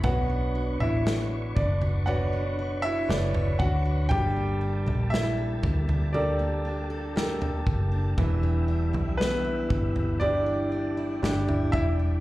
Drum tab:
SD |----o-------o---|----o-------o---|----o-------o---|
FT |o--o--ooo----o--|o--o--ooo----o--|o--o--ooo----o--|
BD |o-----o-------o-|o-----o-------o-|o-----o-------o-|